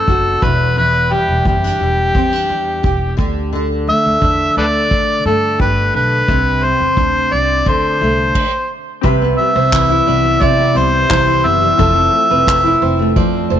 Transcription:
0.00 1.11 G3 medium
0.00 1.11 B3 medium
0.00 0.80 D4 medium
0.00 0.45 A4 medium
0.08 0.36 F#1 medium
0.08 0.50 F#4 medium
0.08 kick loud
0.42 1.13 E1 medium
0.42 0.76 E2 medium
0.42 0.77 B4 medium
0.42 kick medium
0.77 3.26 E2 medium
0.77 1.14 B4 medium
1.11 1.80 G3 soft
1.11 1.47 G4 medium
1.29 1.43 E1 medium
1.45 1.74 F#1 medium
1.45 1.64 C4 medium
1.45 3.15 G4 medium
1.45 kick medium
1.64 2.15 D4 soft
1.80 2.09 E1 medium
1.80 2.49 G3 soft
2.15 2.43 E2 medium
2.15 2.33 C4 medium
2.15 kick loud
2.33 3.26 D4 soft
2.49 2.78 E2 medium
2.49 3.87 G3 medium
2.83 3.12 E1 medium
2.83 3.90 G4 medium
2.83 kick loud
3.17 3.89 D2 medium
3.17 3.52 D3 medium
3.17 kick loud
3.53 6.32 D3 medium
3.87 4.55 A3 medium
3.87 4.53 E5 medium
4.06 4.20 D2 medium
4.21 4.50 E2 medium
4.21 4.90 D4 medium
4.21 kick medium
4.56 4.85 D2 medium
4.56 5.25 A3 soft
4.56 4.65 A4 medium
4.56 4.65 B4 medium
4.56 5.22 D5 loud
4.91 5.19 D3 medium
4.91 5.94 D4 medium
4.91 kick loud
5.25 5.54 G2 medium
5.25 6.36 A3 medium
5.25 5.58 A4 medium
5.59 5.88 G1 medium
5.59 6.35 G4 medium
5.59 5.93 B4 medium
5.59 kick loud
5.94 6.22 B1 medium
5.94 6.65 D4 medium
5.94 6.66 B4 medium
6.28 6.71 C2 medium
6.28 7.73 C3 medium
6.28 kick loud
6.62 7.31 C4 soft
6.62 7.34 C5 medium
6.80 6.95 E2 medium
6.97 7.26 D2 medium
6.97 7.73 D4 medium
6.97 kick medium
7.32 7.60 C2 medium
7.32 8.01 C4 soft
7.32 7.70 D5 medium
7.66 7.95 D2 medium
7.66 8.42 D3 medium
7.66 8.70 C5 medium
7.66 kick medium
8.01 8.29 C2 medium
8.01 8.42 A3 medium
8.35 kick medium
8.35 crash medium
9.01 9.32 C2 loud
9.01 10.39 C3 medium
9.01 11.74 C4 medium
9.01 11.74 G4 medium
9.01 9.36 B4 medium
9.01 11.75 E5 medium
9.01 11.75 B5 medium
9.01 kick loud
9.22 9.55 B3 medium
9.38 10.23 G3 soft
9.38 10.44 E5 medium
9.56 9.98 C2 medium
9.56 10.05 B3 medium
9.56 9.72 C5 medium
9.73 11.09 E3 medium
9.73 kick loud
9.73 clap medium
9.89 11.26 E4 medium
10.07 10.35 C2 medium
10.07 10.57 B3 soft
10.07 10.40 D5 medium
10.24 10.74 G3 medium
10.40 11.85 C3 medium
10.40 10.70 C3 medium
10.40 10.79 D5 medium
10.40 10.76 E5 medium
10.40 kick loud
10.58 10.93 B3 soft
10.75 11.04 C2 medium
10.75 11.60 G3 medium
10.75 11.48 C5 medium
10.75 10.92 D5 medium
11.09 11.39 C2 medium
11.09 11.77 E3 medium
11.09 11.59 C5 medium
11.09 kick loud
11.09 clap loud
11.27 12.64 E4 medium
11.44 11.73 F#1 medium
11.44 11.85 B3 medium
11.44 12.83 E5 loud
11.61 11.86 G3 medium
11.77 12.07 F1 loud
11.77 13.15 F3 medium
11.77 13.60 C4 medium
11.77 13.60 F4 medium
11.77 12.12 A4 medium
11.77 13.60 A4 medium
11.77 13.60 E5 medium
11.77 kick loud
11.94 12.28 C4 medium
12.12 12.46 A3 medium
12.30 12.73 F1 medium
12.30 12.80 C4 soft
12.30 12.47 B4 medium
12.46 12.99 A3 medium
12.46 kick loud
12.46 clap loud
12.64 13.60 E4 medium
12.82 13.18 F1 medium
12.82 13.32 C4 medium
12.82 13.14 C5 medium
12.99 13.51 A3 medium
13.16 13.44 F2 medium
13.16 13.60 F3 medium
13.16 13.49 D5 medium
13.16 kick loud
13.34 13.60 C4 soft
13.50 13.60 F1 medium
13.50 13.60 A3 medium
13.50 13.60 C5 medium

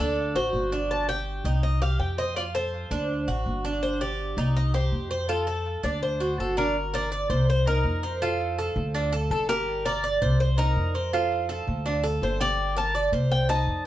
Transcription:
0.00 0.33 D2 medium
0.00 0.34 D4 medium
0.00 0.36 A4 medium
0.35 0.52 A1 medium
0.35 0.71 F#4 medium
0.35 0.70 C5 medium
0.53 1.39 G1 medium
0.72 1.08 D4 medium
0.91 1.07 A5 loud
1.09 1.44 G4 medium
1.09 1.63 G5 loud
1.44 1.96 C2 loud
1.44 1.81 D#4 medium
1.63 1.80 D#5 loud
1.82 2.17 G4 medium
1.82 1.99 F5 medium
1.99 2.85 F2 medium
1.99 2.19 G5 medium
2.18 2.36 C5 medium
2.18 2.35 D#5 medium
2.36 2.54 F4 medium
2.36 2.41 D5 medium
2.55 2.90 A4 medium
2.55 3.61 C5 medium
2.91 3.25 D2 loud
2.91 3.27 D4 medium
3.28 3.45 A1 medium
3.28 3.63 F#4 medium
3.46 4.32 G1 medium
3.65 4.00 D4 medium
3.83 4.00 C5 medium
4.01 4.37 G4 medium
4.01 4.56 D5 medium
4.37 4.88 C2 loud
4.37 4.73 D#4 medium
4.57 4.73 D#5 medium
4.74 5.10 G4 medium
4.74 5.31 C5 medium
4.92 5.78 F2 medium
5.11 5.29 C5 medium
5.29 5.47 F4 medium
5.29 5.80 A4 medium
5.47 5.83 A4 medium
5.83 6.35 D2 medium
5.83 6.19 D4 medium
5.83 6.02 D5 medium
6.03 6.54 C5 medium
6.20 6.56 F#4 medium
6.39 7.24 G1 medium
6.39 6.57 A4 medium
6.57 6.75 D4 medium
6.57 6.95 A#4 medium
6.94 7.11 A#4 medium
6.94 7.45 D5 loud
7.12 7.29 D5 medium
7.30 7.81 C2 medium
7.30 7.65 C5 medium
7.50 7.66 C5 loud
7.67 8.02 D#4 medium
7.67 8.18 A#4 medium
7.84 8.70 F2 medium
8.03 8.21 C5 medium
8.22 8.57 F4 medium
8.22 8.73 A4 medium
8.59 8.94 A4 medium
8.76 9.27 D2 loud
8.95 9.12 D4 medium
9.13 9.48 A4 medium
9.30 10.16 G1 medium
9.30 9.49 A4 medium
9.49 9.84 G4 medium
9.49 9.86 A#4 loud
9.85 10.03 A#4 medium
9.85 10.40 D5 loud
10.04 10.21 D5 medium
10.22 10.72 C2 loud
10.22 10.57 C5 medium
10.40 10.59 C5 loud
10.58 10.93 D#4 medium
10.58 11.13 A#4 loud
10.76 11.61 F2 medium
10.95 11.12 C5 medium
11.13 11.48 F4 medium
11.13 11.64 A4 medium
11.49 11.84 A4 medium
11.67 12.18 D2 loud
11.86 12.03 D4 medium
12.04 12.39 A4 medium
12.22 13.07 G1 medium
12.22 12.39 C5 medium
12.41 12.75 G4 medium
12.41 12.77 D5 loud
12.76 12.94 A#4 medium
12.76 13.11 A5 medium
12.95 13.12 D5 medium
13.12 13.63 C2 medium
13.12 13.48 C5 medium
13.32 13.48 G5 loud
13.49 13.84 D#4 medium
13.49 13.83 A5 loud
13.67 13.86 F2 medium

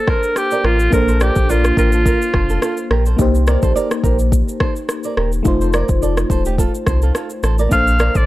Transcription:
0.00 0.87 A#3 medium
0.00 0.91 D4 medium
0.00 0.10 A4 loud
0.00 0.89 A4 medium
0.00 0.90 C5 medium
0.07 0.21 A4 medium
0.07 0.39 A#4 medium
0.07 0.20 C5 medium
0.07 kick medium
0.07 cross-stick medium
0.23 shaker soft
0.36 0.67 G4 medium
0.36 cross-stick medium
0.36 shaker medium
0.51 0.62 A#4 medium
0.51 0.62 D5 medium
0.51 shaker soft
0.64 0.89 A1 medium
0.64 0.93 F4 medium
0.64 0.77 G4 medium
0.64 0.77 A#4 medium
0.64 cross-stick medium
0.79 shaker soft
0.90 1.31 A#1 loud
0.90 3.14 A#3 medium
0.90 3.15 D4 medium
0.90 3.15 A4 medium
0.90 1.23 A#4 loud
0.90 kick loud
0.90 shaker medium
0.95 3.16 C5 medium
1.08 1.19 A4 medium
1.08 1.18 C5 medium
1.08 shaker soft
1.20 1.52 G4 medium
1.20 1.34 A#4 medium
1.20 1.33 D5 medium
1.20 cross-stick loud
1.20 shaker soft
1.36 1.72 A#1 medium
1.36 kick medium
1.36 shaker medium
1.49 1.78 F4 medium
1.49 1.62 A#4 medium
1.49 1.61 D5 medium
1.49 shaker medium
1.65 cross-stick medium
1.65 shaker soft
1.77 2.15 A1 medium
1.77 2.87 F4 medium
1.77 1.90 G4 medium
1.77 1.90 A#4 medium
1.77 kick medium
1.77 shaker medium
1.92 2.04 F4 medium
1.92 2.03 A4 medium
1.92 shaker medium
2.06 2.19 F4 medium
2.06 2.18 A#4 medium
2.06 kick medium
2.06 shaker medium
2.22 shaker medium
2.34 2.59 F1 loud
2.34 2.47 A4 medium
2.34 2.47 C5 medium
2.34 kick medium
2.34 cross-stick medium
2.49 2.60 F4 medium
2.49 2.60 A4 medium
2.49 shaker soft
2.62 2.75 F4 medium
2.62 2.75 A4 medium
2.62 cross-stick medium
2.62 shaker medium
2.77 shaker soft
2.90 3.15 A#1 loud
2.90 3.04 G4 medium
2.90 3.03 A#4 medium
2.90 cross-stick medium
3.06 3.17 A4 medium
3.06 3.16 C5 medium
3.06 shaker soft
3.17 3.57 C2 loud
3.17 5.40 A#3 medium
3.17 5.41 D#4 medium
3.17 5.42 G4 medium
3.17 kick loud
3.17 shaker medium
3.21 5.43 C5 medium
3.35 shaker soft
3.47 3.60 A#4 medium
3.47 3.59 D5 medium
3.47 cross-stick loud
3.47 shaker soft
3.62 3.74 A#1 medium
3.62 3.73 A4 medium
3.62 3.73 C5 medium
3.62 kick loud
3.62 shaker medium
3.76 3.88 A#4 medium
3.76 3.88 D5 medium
3.76 shaker medium
3.91 cross-stick medium
3.91 shaker soft
4.04 4.42 A#1 medium
4.04 4.17 G4 medium
4.04 4.16 A#4 medium
4.04 kick medium
4.04 shaker medium
4.19 shaker medium
4.32 kick medium
4.32 shaker medium
4.48 shaker medium
4.60 4.73 A4 medium
4.60 4.73 C5 medium
4.60 kick medium
4.60 cross-stick loud
4.76 shaker soft
4.89 cross-stick medium
4.89 shaker medium
5.04 5.15 A#4 medium
5.04 5.15 D5 medium
5.04 shaker soft
5.17 5.42 D#1 medium
5.17 5.30 G4 medium
5.17 5.29 A#4 medium
5.17 cross-stick medium
5.32 shaker soft
5.43 5.84 F1 loud
5.43 7.66 A3 medium
5.43 7.67 D#4 medium
5.43 7.68 F4 medium
5.43 kick loud
5.43 shaker medium
5.48 7.69 C5 medium
5.61 5.72 A4 medium
5.61 5.71 C5 medium
5.61 shaker soft
5.73 5.87 A#4 medium
5.73 5.86 D5 medium
5.73 cross-stick loud
5.73 shaker soft
5.89 6.25 F1 medium
5.89 kick medium
5.89 shaker soft
6.02 6.15 A4 medium
6.02 6.14 D5 medium
6.02 shaker medium
6.17 cross-stick medium
6.17 shaker soft
6.30 6.68 D#1 medium
6.30 6.43 A4 medium
6.30 6.43 C5 medium
6.30 kick medium
6.30 shaker medium
6.45 6.56 D#4 medium
6.45 6.56 G4 medium
6.45 shaker medium
6.58 6.71 F4 medium
6.58 6.71 A4 medium
6.58 kick medium
6.58 shaker medium
6.75 shaker medium
6.87 7.11 C2 loud
6.87 6.99 A4 medium
6.87 6.99 C5 medium
6.87 kick medium
6.87 cross-stick medium
6.87 shaker medium
7.02 7.13 F4 medium
7.02 7.12 A4 medium
7.02 shaker soft
7.15 7.28 F4 medium
7.15 7.28 A4 medium
7.15 cross-stick medium
7.15 shaker medium
7.30 shaker soft
7.43 7.68 A1 medium
7.43 7.56 A4 medium
7.43 7.56 C5 medium
7.43 cross-stick medium
7.43 shaker soft
7.58 7.70 A#4 medium
7.58 7.69 D5 medium
7.58 shaker soft
7.69 8.10 A#1 loud
7.69 8.26 A#3 medium
7.69 8.26 D4 medium
7.69 8.26 A4 medium
7.69 8.18 F5 loud
7.69 kick loud
7.69 shaker medium
7.74 8.26 C5 medium
7.87 shaker soft
7.99 8.13 A#4 medium
7.99 8.12 D5 medium
7.99 cross-stick loud
7.99 shaker soft
8.15 8.26 A1 medium
8.15 8.26 A4 medium
8.15 8.26 C5 medium
8.15 8.26 D5 loud
8.15 kick medium
8.15 shaker soft

